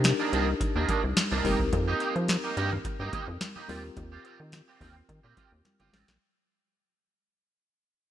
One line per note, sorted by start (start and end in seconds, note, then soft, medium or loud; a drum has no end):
0.00 0.13 C3 loud
0.00 1.40 D4 medium
0.00 1.41 D#4 medium
0.00 1.41 G4 medium
0.00 1.41 A#4 medium
0.04 muted clean electric guitar stroke soft
0.04 snare loud
0.04 closed hi-hat loud
0.04 high conga medium
0.20 0.32 D#3 medium
0.20 0.31 A#3 medium
0.20 0.31 D4 medium
0.33 0.54 C2 loud
0.33 0.49 D#3 medium
0.33 0.47 A#3 medium
0.33 0.46 D4 medium
0.33 closed hi-hat medium
0.47 muted clean electric guitar stroke soft
0.61 muted clean electric guitar stroke soft
0.61 kick loud
0.61 closed hi-hat loud
0.61 muted conga soft
0.76 0.86 D#2 medium
0.76 0.88 D#3 medium
0.76 0.88 A#3 medium
0.76 0.89 D4 medium
0.89 1.02 D#3 medium
0.89 1.02 A#3 medium
0.89 1.02 D4 medium
0.89 kick loud
0.89 closed hi-hat medium
0.89 muted conga soft
1.04 1.14 C2 medium
1.04 muted clean electric guitar stroke medium
1.17 muted clean electric guitar stroke soft
1.17 snare loud
1.17 closed hi-hat medium
1.17 high conga medium
1.31 1.42 C2 loud
1.31 1.47 D#3 medium
1.31 1.43 A#3 medium
1.31 1.45 D4 medium
1.31 high conga medium
1.44 1.56 F1 loud
1.44 1.57 A#3 medium
1.44 3.65 C4 medium
1.44 3.65 D#4 medium
1.44 1.58 D#4 medium
1.44 3.65 G4 medium
1.44 1.58 G4 medium
1.44 3.66 A#4 medium
1.44 kick medium
1.44 open hi-hat medium
1.44 high conga medium
1.60 1.70 C2 medium
1.60 muted clean electric guitar stroke medium
1.60 kick medium
1.73 1.94 F2 loud
1.73 muted clean electric guitar stroke soft
1.73 kick loud
1.73 closed hi-hat medium
1.73 muted conga medium
1.88 2.00 A#3 medium
1.88 2.00 D#4 medium
1.88 2.01 G4 medium
2.00 2.14 A#3 medium
2.00 2.14 D#4 medium
2.00 2.14 G4 medium
2.00 closed hi-hat medium
2.16 2.37 F3 loud
2.16 muted clean electric guitar stroke soft
2.16 closed hi-hat soft
2.28 muted clean electric guitar stroke soft
2.28 snare loud
2.28 closed hi-hat loud
2.28 high conga medium
2.44 2.56 A#3 soft
2.44 2.55 D#4 medium
2.44 2.55 G4 medium
2.57 2.79 G2 loud
2.57 2.73 A#3 loud
2.57 2.71 D#4 medium
2.57 2.71 G4 loud
2.57 closed hi-hat medium
2.72 muted clean electric guitar stroke soft
2.72 low conga medium
2.85 muted clean electric guitar stroke soft
2.85 kick loud
2.85 closed hi-hat medium
2.85 muted conga soft
3.00 3.10 G2 medium
3.00 3.12 A#3 medium
3.00 3.12 D#4 medium
3.00 3.13 G4 medium
3.13 3.26 A#3 medium
3.13 3.26 D#4 medium
3.13 3.26 G4 medium
3.13 kick loud
3.13 closed hi-hat medium
3.13 muted conga soft
3.13 low conga medium
3.28 3.38 F2 loud
3.41 muted clean electric guitar stroke soft
3.41 snare loud
3.41 closed hi-hat medium
3.41 high conga medium
3.56 3.68 A#3 medium
3.56 3.69 D#4 medium
3.56 3.69 G4 medium
3.56 high conga medium
3.68 3.91 D#2 loud
3.68 5.89 C4 medium
3.68 3.82 C4 medium
3.68 5.89 F4 medium
3.68 3.82 F4 medium
3.68 5.90 G4 medium
3.68 3.82 G4 medium
3.68 5.90 A#4 medium
3.68 open hi-hat medium
3.68 high conga medium
3.84 muted clean electric guitar stroke soft
3.96 4.19 D#2 loud
3.96 muted clean electric guitar stroke soft
3.96 kick loud
3.96 closed hi-hat medium
3.96 muted conga medium
4.12 4.24 C4 medium
4.12 4.24 F4 medium
4.12 4.25 G4 medium
4.25 4.38 C4 medium
4.25 4.38 F4 medium
4.25 4.38 G4 medium
4.25 closed hi-hat medium
4.40 4.62 D#3 medium
4.40 muted clean electric guitar stroke soft
4.52 muted clean electric guitar stroke soft
4.52 snare loud
4.52 closed hi-hat loud
4.52 high conga medium
4.68 4.80 C4 medium
4.68 4.80 F4 medium
4.68 4.79 G4 medium
4.81 5.03 D#2 loud
4.81 4.97 C4 medium
4.81 4.95 F4 medium
4.81 4.94 G4 medium
4.81 kick loud
4.81 open hi-hat medium
4.81 low conga medium
4.96 muted clean electric guitar stroke soft
5.09 5.20 D#3 loud
5.09 muted clean electric guitar stroke soft
5.09 kick loud
5.09 closed hi-hat medium
5.09 muted conga soft
5.23 5.34 A#2 medium
5.23 5.36 C4 medium
5.23 5.36 F4 medium
5.23 5.37 G4 medium
5.37 5.50 C4 medium
5.37 5.50 F4 medium
5.37 5.50 G4 medium
5.37 kick loud
5.37 closed hi-hat medium
5.37 muted conga soft
5.52 5.62 D#2 medium
5.52 muted clean electric guitar stroke soft
5.65 muted clean electric guitar stroke soft
5.65 snare medium
5.65 closed hi-hat medium
5.65 high conga medium
5.80 5.90 G1 medium
5.80 5.92 C4 medium
5.80 5.92 F4 medium
5.80 5.93 G4 medium
5.80 closed hi-hat soft
5.80 high conga soft
5.93 6.05 A1 loud
5.93 6.06 C4 medium
5.93 6.06 F4 medium
5.93 6.07 G4 medium
5.93 snare medium
5.93 open hi-hat medium
5.93 high conga medium
6.08 6.18 A#1 medium
6.08 muted clean electric guitar stroke soft
6.08 snare medium